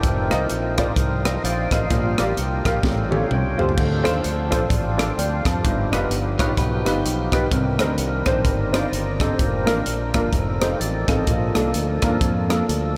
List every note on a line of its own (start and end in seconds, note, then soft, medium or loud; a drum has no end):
0.00 0.27 F1 medium
0.00 1.86 F3 medium
0.00 1.86 C4 medium
0.00 1.86 D#4 medium
0.00 0.30 G4 medium
0.00 1.22 A#4 medium
0.00 0.30 C5 medium
0.00 2.81 F5 medium
0.00 1.87 G5 medium
0.00 1.89 C6 medium
0.00 1.88 D#6 medium
0.00 kick loud
0.00 closed hi-hat medium
0.30 0.48 C2 medium
0.30 0.42 F4 medium
0.30 0.42 A#4 medium
0.30 0.42 C5 medium
0.30 0.42 D#5 medium
0.30 cross-stick medium
0.30 closed hi-hat medium
0.50 0.90 A#1 medium
0.50 closed hi-hat medium
0.77 0.89 F4 medium
0.77 0.89 A#4 medium
0.77 0.89 C5 medium
0.77 0.89 D5 medium
0.77 kick medium
0.77 cross-stick loud
0.77 closed hi-hat medium
0.96 1.36 C2 medium
0.96 kick medium
0.96 closed hi-hat medium
1.25 1.43 A#4 soft
1.25 1.43 D5 soft
1.25 1.42 D#5 medium
1.25 1.42 G5 medium
1.25 cross-stick loud
1.25 closed hi-hat medium
1.44 1.68 A#1 medium
1.44 1.71 C5 medium
1.44 1.71 D5 medium
1.44 1.71 F5 medium
1.44 1.71 G5 medium
1.44 closed hi-hat medium
1.71 1.87 A1 medium
1.71 2.17 A#4 soft
1.71 2.17 C5 soft
1.71 2.16 D#5 medium
1.71 2.17 F5 medium
1.71 kick medium
1.71 cross-stick medium
1.71 closed hi-hat medium
1.90 2.15 A#1 medium
1.90 2.61 A#2 medium
1.90 2.83 G3 medium
1.90 1.98 C#4 medium
1.90 2.83 F4 medium
1.90 2.83 A#4 medium
1.90 3.76 G5 medium
1.90 kick loud
1.90 closed hi-hat medium
1.98 2.86 D4 medium
2.18 2.35 A1 medium
2.18 2.29 F4 medium
2.18 2.30 G4 medium
2.18 2.30 A#4 medium
2.18 2.30 D5 medium
2.18 cross-stick medium
2.18 closed hi-hat medium
2.37 2.61 C2 medium
2.37 closed hi-hat medium
2.65 2.81 A#1 medium
2.65 2.76 F4 medium
2.65 2.76 G4 medium
2.65 2.76 A#4 medium
2.65 2.76 F5 medium
2.65 kick medium
2.65 cross-stick medium
2.65 closed hi-hat medium
2.83 3.23 A1 medium
2.83 3.54 A2 medium
2.83 3.76 G3 medium
2.83 3.76 C#4 medium
2.83 3.76 F4 medium
2.83 2.91 G#4 medium
2.83 7.48 F5 medium
2.83 5.61 A5 medium
2.83 kick loud
2.83 snare soft
2.91 3.33 A4 medium
3.10 3.22 F4 medium
3.10 3.22 G4 medium
3.10 3.23 A4 medium
3.10 3.22 C#5 medium
3.10 3.21 C#5 medium
3.10 high tom medium
3.23 3.31 F5 medium
3.31 3.55 C2 medium
3.31 3.59 C#5 medium
3.31 3.59 G5 medium
3.31 mid tom medium
3.58 3.75 C#2 medium
3.58 3.69 F4 medium
3.58 3.70 G4 medium
3.58 3.70 A4 medium
3.58 3.70 C5 medium
3.58 floor tom medium
3.62 4.05 G4 soft
3.62 4.05 C5 medium
3.69 floor tom medium
3.77 4.02 D2 medium
3.77 4.48 D3 medium
3.77 3.85 E3 medium
3.77 5.61 C4 medium
3.77 5.61 D4 medium
3.77 5.15 A4 medium
3.77 5.63 D5 medium
3.77 5.63 C6 medium
3.77 kick loud
3.77 crash medium
3.85 5.65 F3 medium
4.03 4.22 D#2 medium
4.03 4.15 D4 medium
4.03 4.15 F4 medium
4.03 4.16 A4 medium
4.03 4.16 C5 medium
4.03 cross-stick medium
4.03 closed hi-hat medium
4.24 4.48 D2 medium
4.24 closed hi-hat medium
4.50 4.68 A#1 medium
4.50 4.62 D4 medium
4.50 4.62 F4 medium
4.50 4.63 A4 medium
4.50 4.63 C5 medium
4.50 kick medium
4.50 cross-stick medium
4.50 closed hi-hat medium
4.70 5.10 A1 medium
4.70 kick medium
4.70 closed hi-hat medium
4.97 5.09 D4 medium
4.97 5.09 F4 medium
4.97 5.09 A4 medium
4.97 5.10 D5 medium
4.97 cross-stick loud
4.97 closed hi-hat medium
5.17 5.42 D2 medium
5.17 5.45 C5 medium
5.17 5.44 D5 medium
5.17 5.45 F5 medium
5.17 5.44 G5 medium
5.17 closed hi-hat medium
5.45 5.61 F2 medium
5.45 5.70 G4 medium
5.45 5.91 C5 medium
5.45 5.90 D5 medium
5.45 5.90 A5 medium
5.45 kick medium
5.45 cross-stick medium
5.45 closed hi-hat medium
5.63 5.89 G1 loud
5.63 6.36 G2 medium
5.63 7.49 F3 medium
5.63 7.49 B3 medium
5.63 7.49 D#4 medium
5.63 5.72 F4 medium
5.63 7.49 G5 medium
5.63 7.50 B5 medium
5.63 kick loud
5.63 closed hi-hat medium
5.71 7.52 G4 medium
5.92 6.08 F1 medium
5.92 6.03 D#4 medium
5.92 6.03 F4 medium
5.92 6.04 G4 medium
5.92 6.04 B4 medium
5.92 cross-stick medium
5.92 closed hi-hat medium
6.10 6.35 G1 medium
6.10 closed hi-hat medium
6.39 6.55 A#1 medium
6.39 6.50 D#4 medium
6.39 6.50 F4 medium
6.39 6.51 G4 medium
6.39 6.57 A#4 medium
6.39 6.51 B4 medium
6.39 6.57 C#5 medium
6.39 kick medium
6.39 cross-stick loud
6.39 closed hi-hat medium
6.57 6.82 B1 medium
6.57 6.85 G4 medium
6.57 6.85 B4 medium
6.57 kick medium
6.57 closed hi-hat medium
6.85 7.02 G1 medium
6.85 6.97 D#4 medium
6.85 7.49 D#4 medium
6.85 6.97 F4 medium
6.85 6.97 G4 medium
6.85 7.49 G4 medium
6.85 6.97 B4 medium
6.85 cross-stick loud
6.85 closed hi-hat medium
7.05 7.29 B1 medium
7.05 closed hi-hat medium
7.32 7.49 B1 medium
7.32 7.44 D#4 medium
7.32 7.44 F4 medium
7.32 7.44 G4 medium
7.32 7.44 B4 medium
7.32 kick medium
7.32 cross-stick loud
7.32 closed hi-hat medium
7.50 7.76 C2 medium
7.50 8.23 C3 medium
7.50 9.36 D#3 medium
7.50 9.36 C4 medium
7.50 9.36 D4 medium
7.50 8.72 A#4 medium
7.50 9.37 C5 medium
7.50 10.30 D5 medium
7.50 10.30 A#5 medium
7.50 kick loud
7.50 closed hi-hat medium
7.79 7.95 D2 medium
7.79 7.91 C4 medium
7.79 7.91 D4 medium
7.79 7.91 D#4 medium
7.79 7.91 A#4 medium
7.79 cross-stick medium
7.79 closed hi-hat medium
7.98 8.22 C2 medium
7.98 closed hi-hat medium
8.26 8.43 A#1 medium
8.26 8.38 C4 medium
8.26 8.38 D4 medium
8.26 8.38 D#4 medium
8.26 8.38 C5 medium
8.26 kick medium
8.26 cross-stick medium
8.26 closed hi-hat medium
8.45 8.85 G1 medium
8.45 kick loud
8.45 closed hi-hat medium
8.72 8.84 C4 medium
8.72 8.85 D4 medium
8.72 8.85 D#4 medium
8.72 8.85 F4 medium
8.72 8.93 D5 soft
8.72 8.92 G5 medium
8.72 cross-stick loud
8.72 closed hi-hat medium
8.92 9.32 G1 medium
8.92 9.21 A#4 medium
8.92 9.20 D#5 medium
8.92 closed hi-hat medium
9.20 9.32 C4 medium
9.20 9.32 D4 medium
9.20 9.32 D#4 medium
9.20 9.66 G4 medium
9.20 9.32 A4 medium
9.20 9.66 C5 medium
9.20 kick medium
9.20 cross-stick medium
9.20 closed hi-hat medium
9.39 9.63 F1 medium
9.39 10.32 F3 medium
9.39 10.32 A#3 medium
9.39 10.33 D4 medium
9.39 9.47 A4 medium
9.39 kick loud
9.39 closed hi-hat medium
9.47 10.36 A#4 medium
9.65 9.84 A1 medium
9.65 9.78 A#3 medium
9.65 9.78 D4 medium
9.65 9.78 F4 medium
9.65 9.78 A#4 medium
9.65 cross-stick medium
9.65 closed hi-hat medium
9.86 10.11 A#1 medium
9.86 closed hi-hat medium
10.14 10.31 G1 medium
10.14 10.26 A#3 medium
10.14 10.26 D4 medium
10.14 10.26 F4 medium
10.14 10.26 A#4 medium
10.14 kick medium
10.14 cross-stick loud
10.14 closed hi-hat medium
10.33 10.73 F1 medium
10.33 11.26 F3 medium
10.33 11.26 C4 medium
10.33 11.25 D#4 medium
10.33 10.61 A4 medium
10.33 12.97 F5 medium
10.33 12.97 A5 medium
10.33 kick loud
10.33 closed hi-hat medium
10.61 10.73 C4 medium
10.61 10.73 D#4 medium
10.61 10.73 F4 medium
10.61 10.80 G4 medium
10.61 10.73 A4 medium
10.61 10.80 C5 medium
10.61 cross-stick loud
10.61 closed hi-hat medium
10.80 11.05 A1 medium
10.80 11.07 A4 medium
10.80 11.07 D5 medium
10.80 closed hi-hat medium
11.08 11.24 A1 medium
11.08 11.20 C4 medium
11.08 11.20 D#4 medium
11.08 11.20 F4 medium
11.08 11.20 A4 medium
11.08 11.26 A4 medium
11.08 11.53 D#5 medium
11.08 kick medium
11.08 cross-stick medium
11.08 closed hi-hat medium
11.26 11.52 A#1 medium
11.26 11.99 A#2 medium
11.26 12.97 F3 medium
11.26 12.97 A#3 medium
11.26 12.97 D4 medium
11.26 12.97 A4 medium
11.26 kick medium
11.26 closed hi-hat medium
11.54 11.72 C2 medium
11.54 11.66 A#3 medium
11.54 11.66 D4 medium
11.54 11.66 F4 medium
11.54 11.67 A4 medium
11.54 cross-stick medium
11.54 closed hi-hat medium
11.74 11.99 D2 medium
11.74 closed hi-hat medium
12.02 12.19 D#2 medium
12.02 12.14 A#3 medium
12.02 12.14 D4 medium
12.02 12.14 F4 medium
12.02 12.14 A#4 medium
12.02 kick medium
12.02 cross-stick loud
12.02 closed hi-hat medium
12.21 12.61 F2 medium
12.21 kick loud
12.21 closed hi-hat medium
12.49 12.61 A#3 medium
12.49 12.61 D4 medium
12.49 12.61 F4 medium
12.49 12.61 A4 medium
12.49 cross-stick loud
12.49 closed hi-hat medium
12.69 12.97 D2 medium
12.69 closed hi-hat medium